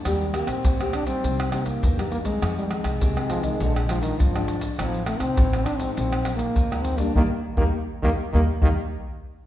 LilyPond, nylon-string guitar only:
\new Staff \with { instrumentName = "Nylon-string guitar" } { \clef bass \time 4/4 \key ees \major \tempo 4 = 101 << { <bes c' g'>16 r16 <bes c' g'>8 r16 <bes c' g'>8 <g bes ees'>8. <g bes ees'>8. <g bes ees'>8 <ees aes c'>16~ | <ees aes c'>8 <ees aes c'>8. <ees aes c'>8. <f aes d'>8 <f aes d'>8. <f aes d'>8. | <f c' ees'>16 r16 <f c' ees'>8. <f c' ees'>8 <f aes ees'>8. <f aes ees'>8 r16 <f aes ees'>8 <g bes d'>16 | <ees g bes>16 r8 <ees g bes>16 r8 <ees g bes>16 r16 <ees g bes>16 r16 <ees g bes>16 r4 r16 | } \\ { ees4 bes,4 c4 g,4 | f,4 c4 bes,4 f,4 | a,4 a,4 bes,4 f,4 | r1 | } >> }